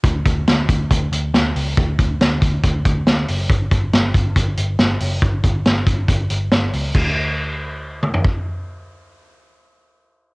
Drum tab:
CC |----------------|----------------|----------------|----------------|
HH |x-x-x-x-x-x-x-o-|x-x-x-x-x-x-x-o-|x-x-x-x-x-x-x-o-|x-x-x-x-x-x-x-o-|
SD |----o-------o---|----o-------o---|----o-------o---|----o-------o---|
T2 |----------------|----------------|----------------|----------------|
FT |----------------|----------------|----------------|----------------|
BD |o-o---o-o-------|o-o---o-o-o-----|o-o---o-o-------|o-o---o-o-------|

CC |x---------------|----------------|
HH |----------------|----------------|
SD |----------------|----------------|
T2 |----------o-----|----------------|
FT |-----------o----|----------------|
BD |o-----------o---|----------------|